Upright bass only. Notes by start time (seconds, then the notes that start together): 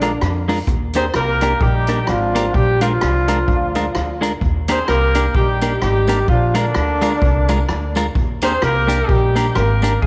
Already playing: A#1
0.22 F2
0.68 D#2
1.15 C2
1.61 A#1
2.09 G#1
2.55 A#1
3.02 C2
3.48 D2
3.96 D2
4.42 D#2
4.89 C2
5.35 A#1
5.82 G#1
6.29 A#1
6.76 D2
7.22 C2
7.69 D2
8.15 D#2
8.62 C2
9.09 A#1
9.56 G#1
10.03 A#1